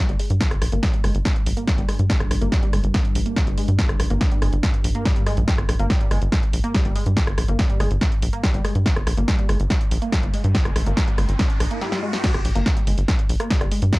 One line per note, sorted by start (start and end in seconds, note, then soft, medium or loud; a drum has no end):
0.00 11.82 G2 medium
0.09 0.16 G1 loud
0.09 0.18 G3 medium
0.09 closed hi-hat medium
0.20 0.28 G#3 medium
0.20 open hi-hat medium
0.30 0.44 G2 medium
0.30 closed hi-hat medium
0.41 0.44 G3 medium
0.41 kick loud
0.41 snare loud
0.41 closed hi-hat medium
0.51 0.58 G1 medium
0.51 cross-stick medium
0.51 closed hi-hat medium
0.62 0.69 A#1 loud
0.62 cross-stick medium
0.62 open hi-hat loud
0.72 0.80 G1 loud
0.72 0.81 A#3 medium
0.72 closed hi-hat medium
0.83 0.92 G3 medium
0.83 kick loud
0.83 snare loud
0.83 closed hi-hat medium
0.93 1.02 G3 medium
0.93 closed hi-hat medium
1.04 1.11 G1 loud
1.04 1.13 G#3 medium
1.04 cross-stick medium
1.04 open hi-hat medium
1.15 1.22 G1 medium
1.15 closed hi-hat medium
1.25 1.29 G3 medium
1.25 kick loud
1.25 snare loud
1.25 closed hi-hat medium
1.36 closed hi-hat medium
1.46 1.53 A#1 loud
1.46 open hi-hat loud
1.57 1.65 A#3 medium
1.57 closed hi-hat medium
1.67 1.76 G3 medium
1.67 kick loud
1.67 snare loud
1.67 closed hi-hat medium
1.78 1.85 G1 loud
1.78 1.87 G3 medium
1.78 closed hi-hat medium
1.89 1.97 G#3 medium
1.89 cross-stick medium
1.89 open hi-hat medium
1.99 2.13 G2 medium
1.99 closed hi-hat medium
2.10 2.13 G3 medium
2.10 kick loud
2.10 snare loud
2.10 closed hi-hat medium
2.20 2.27 G1 loud
2.20 cross-stick medium
2.20 closed hi-hat medium
2.31 2.38 A#1 loud
2.31 cross-stick medium
2.31 open hi-hat loud
2.41 2.49 G1 medium
2.41 2.50 A#3 medium
2.41 closed hi-hat medium
2.52 2.61 G3 medium
2.52 kick loud
2.52 snare loud
2.52 closed hi-hat medium
2.62 2.71 G3 medium
2.62 closed hi-hat medium
2.73 2.80 G1 medium
2.73 2.82 G#3 medium
2.73 cross-stick medium
2.73 open hi-hat loud
2.84 2.91 G1 medium
2.84 closed hi-hat soft
2.94 2.98 G3 medium
2.94 kick loud
2.94 snare loud
2.94 closed hi-hat medium
3.05 closed hi-hat medium
3.15 3.22 A#1 loud
3.15 open hi-hat loud
3.26 3.34 A#3 medium
3.26 closed hi-hat medium
3.36 3.45 G3 medium
3.36 kick loud
3.36 snare loud
3.36 closed hi-hat medium
3.47 3.54 G1 medium
3.47 3.56 G3 medium
3.47 closed hi-hat medium
3.58 3.66 G#3 medium
3.58 open hi-hat loud
3.68 3.82 G2 medium
3.68 closed hi-hat medium
3.79 3.82 G3 medium
3.79 kick loud
3.79 snare loud
3.79 closed hi-hat medium
3.89 3.96 G1 loud
3.89 cross-stick medium
3.89 closed hi-hat soft
4.00 4.07 A#1 loud
4.00 cross-stick medium
4.00 open hi-hat loud
4.10 4.18 G1 loud
4.10 4.19 A#3 medium
4.10 closed hi-hat medium
4.21 4.30 G3 medium
4.21 kick loud
4.21 snare loud
4.21 closed hi-hat medium
4.31 4.40 G3 medium
4.31 closed hi-hat medium
4.42 4.49 G1 medium
4.42 4.51 G#3 medium
4.42 cross-stick medium
4.42 open hi-hat medium
4.53 4.60 G1 medium
4.53 closed hi-hat soft
4.63 4.67 G3 medium
4.63 kick loud
4.63 snare loud
4.63 closed hi-hat medium
4.74 closed hi-hat medium
4.84 4.91 A#1 loud
4.84 open hi-hat loud
4.95 5.03 A#3 medium
4.95 closed hi-hat soft
5.05 5.14 G3 medium
5.05 kick loud
5.05 snare loud
5.05 closed hi-hat medium
5.16 5.25 G3 medium
5.16 closed hi-hat medium
5.27 5.35 G#3 medium
5.27 cross-stick medium
5.27 open hi-hat medium
5.37 5.44 A#1 loud
5.37 closed hi-hat medium
5.48 5.51 G3 medium
5.48 kick loud
5.48 snare loud
5.48 closed hi-hat medium
5.58 5.65 G1 loud
5.58 cross-stick medium
5.58 closed hi-hat soft
5.69 5.76 A#1 loud
5.69 cross-stick loud
5.69 open hi-hat loud
5.79 5.87 G1 medium
5.79 5.88 A#3 medium
5.79 closed hi-hat medium
5.90 5.99 G3 medium
5.90 kick loud
5.90 snare loud
5.90 closed hi-hat medium
6.01 6.09 G3 medium
6.01 closed hi-hat medium
6.11 6.18 G1 loud
6.11 6.20 G#3 medium
6.11 cross-stick medium
6.11 open hi-hat medium
6.22 6.29 G1 medium
6.22 closed hi-hat soft
6.32 6.36 G3 medium
6.32 kick loud
6.32 snare loud
6.32 closed hi-hat medium
6.43 closed hi-hat soft
6.53 6.60 A#1 loud
6.53 open hi-hat loud
6.64 6.72 A#3 medium
6.64 closed hi-hat soft
6.74 6.83 G3 medium
6.74 kick loud
6.74 snare loud
6.74 closed hi-hat medium
6.85 6.92 G1 loud
6.85 6.94 G3 medium
6.85 closed hi-hat soft
6.96 7.04 G#3 medium
6.96 open hi-hat medium
7.06 7.20 G2 medium
7.06 closed hi-hat medium
7.17 7.20 G3 medium
7.17 kick loud
7.17 snare loud
7.17 closed hi-hat medium
7.27 7.34 G1 loud
7.27 cross-stick loud
7.27 closed hi-hat soft
7.38 7.45 A#1 loud
7.38 cross-stick loud
7.38 open hi-hat loud
7.48 7.56 G1 loud
7.48 7.57 A#3 medium
7.48 closed hi-hat medium
7.59 7.68 G3 medium
7.59 kick loud
7.59 snare loud
7.59 closed hi-hat medium
7.70 7.78 G3 medium
7.70 closed hi-hat medium
7.80 7.87 G1 medium
7.80 7.89 G#3 medium
7.80 cross-stick loud
7.80 open hi-hat medium
7.91 7.98 G1 medium
7.91 closed hi-hat soft
8.01 8.05 G3 medium
8.01 kick loud
8.01 snare loud
8.01 closed hi-hat medium
8.12 closed hi-hat soft
8.22 8.30 A#1 loud
8.22 open hi-hat loud
8.33 8.42 A#3 medium
8.33 closed hi-hat soft
8.43 8.52 G3 medium
8.43 kick loud
8.43 snare loud
8.43 closed hi-hat medium
8.54 8.61 G1 loud
8.54 8.63 G3 medium
8.54 closed hi-hat medium
8.65 8.73 G#3 medium
8.65 cross-stick medium
8.65 open hi-hat medium
8.75 8.89 G2 medium
8.75 closed hi-hat medium
8.86 8.89 G3 medium
8.86 kick loud
8.86 snare loud
8.86 closed hi-hat medium
8.86 riser medium
8.96 9.03 G1 medium
8.96 cross-stick medium
8.96 closed hi-hat medium
9.07 9.14 A#1 loud
9.07 cross-stick loud
9.07 open hi-hat loud
9.17 9.25 G1 loud
9.17 9.26 A#3 medium
9.17 closed hi-hat medium
9.28 9.37 G3 medium
9.28 kick loud
9.28 snare loud
9.28 closed hi-hat medium
9.39 9.47 G3 medium
9.39 closed hi-hat medium
9.49 9.56 G1 medium
9.49 9.58 G#3 medium
9.49 cross-stick loud
9.49 open hi-hat medium
9.60 9.67 G1 medium
9.60 closed hi-hat soft
9.70 9.74 G3 medium
9.70 kick loud
9.70 snare loud
9.70 closed hi-hat medium
9.81 closed hi-hat medium
9.91 9.99 A#1 loud
9.91 open hi-hat loud
10.02 10.11 A#3 medium
10.02 closed hi-hat medium
10.12 10.21 G3 medium
10.12 kick loud
10.12 snare loud
10.12 closed hi-hat medium
10.23 10.30 G1 loud
10.23 10.32 G3 medium
10.23 closed hi-hat medium
10.34 10.42 G#3 medium
10.34 open hi-hat medium
10.44 10.58 G2 medium
10.44 closed hi-hat soft
10.55 10.58 G3 medium
10.55 kick loud
10.55 snare loud
10.55 closed hi-hat medium
10.65 10.72 G1 loud
10.65 cross-stick medium
10.65 closed hi-hat medium
10.76 10.83 A#1 loud
10.76 cross-stick medium
10.76 open hi-hat loud
10.86 10.94 G1 loud
10.86 10.95 A#3 medium
10.86 closed hi-hat medium
10.97 11.06 G3 medium
10.97 kick loud
10.97 snare loud
10.97 closed hi-hat medium
11.08 11.16 G3 medium
11.08 closed hi-hat medium
11.18 11.25 G1 medium
11.18 11.27 G#3 medium
11.18 cross-stick medium
11.18 open hi-hat medium
11.29 11.36 G1 medium
11.29 closed hi-hat medium
11.39 11.43 G3 medium
11.39 kick loud
11.39 snare loud
11.39 closed hi-hat medium
11.50 closed hi-hat medium
11.60 11.68 A#1 loud
11.60 cross-stick medium
11.60 open hi-hat loud
11.71 11.80 A#3 medium
11.71 closed hi-hat medium
11.81 11.90 G3 medium
11.81 snare medium
11.92 12.01 G3 medium
11.92 snare medium
12.03 12.11 G#3 medium
12.13 snare medium
12.24 12.27 G3 medium
12.24 kick loud
12.24 snare loud
12.24 closed hi-hat medium
12.24 crash loud
12.34 12.41 G1 loud
12.34 cross-stick medium
12.34 closed hi-hat medium
12.45 12.52 A#1 loud
12.45 open hi-hat loud
12.55 12.63 G1 loud
12.55 12.64 A#3 medium
12.55 closed hi-hat medium
12.66 12.75 G3 medium
12.66 kick loud
12.66 snare loud
12.66 closed hi-hat medium
12.77 12.85 G3 medium
12.77 closed hi-hat medium
12.87 12.94 G1 medium
12.87 12.96 G#3 medium
12.87 open hi-hat medium
12.98 13.05 G1 medium
12.98 closed hi-hat medium
13.08 13.12 G3 medium
13.08 kick loud
13.08 snare loud
13.08 closed hi-hat medium
13.19 closed hi-hat medium
13.29 13.37 A#1 loud
13.29 open hi-hat loud
13.40 13.49 A#3 medium
13.40 cross-stick medium
13.40 closed hi-hat medium
13.50 13.59 G3 medium
13.50 kick loud
13.50 snare loud
13.50 closed hi-hat medium
13.61 13.68 G1 loud
13.61 13.70 G3 medium
13.61 cross-stick medium
13.61 closed hi-hat medium
13.72 13.80 G#3 medium
13.72 open hi-hat medium
13.82 13.97 G2 medium
13.82 closed hi-hat medium
13.93 13.96 G3 medium
13.93 kick loud
13.93 snare loud
13.93 closed hi-hat medium